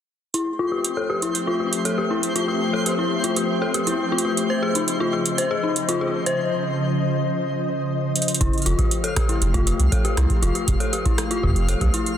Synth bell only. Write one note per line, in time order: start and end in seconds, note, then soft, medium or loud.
0.34 0.44 E4 medium
0.59 0.69 F4 medium
0.72 0.84 G4 medium
0.97 1.07 A4 medium
1.10 1.19 G4 medium
1.22 1.32 E4 medium
1.47 1.57 F4 medium
1.60 1.72 G4 medium
1.85 1.95 A4 medium
1.98 2.08 G4 medium
2.10 2.20 E4 medium
2.36 2.45 F4 medium
2.48 2.60 G4 medium
2.73 2.83 A4 medium
2.86 2.96 G4 medium
2.99 3.08 E4 medium
3.24 3.34 F4 medium
3.36 3.48 G4 medium
3.62 3.71 A4 medium
3.74 3.84 G4 medium
3.87 3.97 E4 medium
4.12 4.22 F4 loud
4.25 4.37 G4 medium
4.50 4.60 C5 medium
4.63 4.72 G#4 loud
4.75 4.85 D#4 medium
5.00 5.10 F4 medium
5.13 5.25 G#4 medium
5.38 5.48 C5 medium
5.51 5.61 G#4 medium
5.63 5.73 D#4 medium
5.89 5.98 F4 loud
6.01 6.13 G#4 medium
6.26 6.36 C5 loud
8.41 8.50 E4 medium
8.66 8.76 F4 loud
8.79 8.91 G4 medium
9.04 9.14 A4 medium
9.16 9.26 G4 loud
9.29 9.39 E4 medium
9.54 9.64 F4 medium
9.67 9.79 G4 medium
9.92 10.02 A4 medium
10.05 10.14 G4 medium
10.17 10.27 E4 medium
10.42 10.52 F4 medium
10.55 10.67 G4 medium
10.80 10.90 A4 loud
10.93 11.03 G4 medium
11.05 11.15 E4 medium
11.31 11.40 F4 loud
11.43 11.55 G4 medium
11.69 11.78 A4 medium
11.81 11.91 G4 loud
11.94 12.03 E4 medium